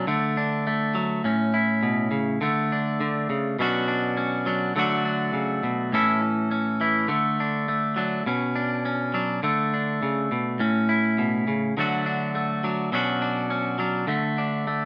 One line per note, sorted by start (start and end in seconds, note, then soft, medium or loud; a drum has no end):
0.07 1.21 D3 medium
0.07 0.66 A3 medium
0.37 0.96 D4 medium
0.67 1.25 A3 medium
0.95 1.21 F#3 medium
1.24 2.38 A2 medium
1.24 2.39 C#4 medium
1.54 2.38 E4 medium
1.83 2.11 B2 medium
2.11 2.41 C#3 medium
2.41 2.99 D3 medium
2.41 3.59 A3 medium
2.72 3.56 D4 medium
3.01 3.29 D3 medium
3.30 3.59 C#3 medium
3.59 4.75 B2 medium
3.59 4.45 F#3 medium
3.59 4.16 C#4 medium
3.59 3.87 D4 medium
3.59 4.77 F#4 medium
3.88 4.46 D4 medium
4.17 4.72 C#4 medium
4.46 4.72 F#3 medium
4.46 4.72 D4 medium
4.76 5.33 D3 medium
4.76 5.89 F#3 medium
4.76 5.93 A3 medium
4.76 5.04 D4 medium
4.76 5.94 F#4 medium
5.05 5.89 D4 medium
5.33 5.63 C#3 medium
5.63 5.92 B2 medium
5.92 7.06 A2 medium
5.92 6.79 E3 medium
5.92 6.50 C#4 medium
5.92 6.21 E4 medium
5.92 7.07 A4 medium
6.22 muted clean electric guitar stroke medium
6.51 7.06 C#4 medium
6.81 7.09 E3 medium
6.81 7.06 E4 medium
7.08 8.22 D3 medium
7.08 7.67 A3 medium
7.40 7.96 D4 medium
7.68 8.26 A3 medium
7.96 8.22 F#3 medium
7.96 8.23 D4 medium
8.26 9.43 B2 medium
8.26 8.84 C#4 medium
8.56 9.13 D4 medium
8.85 9.40 C#4 medium
9.14 9.39 F#3 medium
9.14 9.40 D4 medium
9.43 10.01 D3 medium
9.43 10.60 A3 medium
9.74 10.57 D4 medium
10.03 10.31 C#3 medium
10.32 10.60 B2 medium
10.59 11.73 A2 medium
10.59 11.73 C#4 medium
10.89 11.73 E4 medium
11.18 11.47 B2 medium
11.48 11.76 C#3 medium
11.77 12.90 D3 medium
11.77 12.63 F#3 medium
11.77 12.34 A3 medium
11.77 12.05 D4 medium
11.77 12.94 F#4 medium
12.06 12.63 D4 medium
12.35 12.93 A3 medium
12.64 12.89 F#3 medium
12.64 12.89 D4 medium
12.92 14.07 B2 medium
12.92 13.78 F#3 medium
12.92 13.49 C#4 medium
12.92 13.21 D4 medium
12.92 14.85 F#4 medium
13.22 13.78 D4 medium
13.50 14.05 C#4 medium
13.79 14.05 F#3 medium
13.79 14.05 D4 medium
14.07 14.85 D3 medium
14.07 14.66 A3 medium
14.38 14.85 D4 medium
14.67 14.85 A3 medium